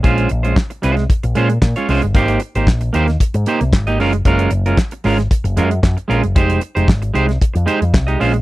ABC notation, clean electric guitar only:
X:1
M:4/4
L:1/16
Q:1/4=114
K:Fm
V:1 name="Clean electric guitar"
[A,DFc]2 z [A,DFc] z2 [A,DFc]2 z2 [A,DFc] z2 [A,DFd] [A,DFc] z | [B,EGc]2 z [B,EGc] z2 [B,EGc] z3 [B,EGc] z2 [B,EGe] [A,DFB] z | [A,DFB]2 z [A,DFB] z2 [A,DFB] z3 [A,DFB] z3 [A,DFB] z | [A,EGc]2 z [A,EGc] z2 [A,EGc] z3 [A,EGc] z2 [A,EGe] [A,DFc] z |]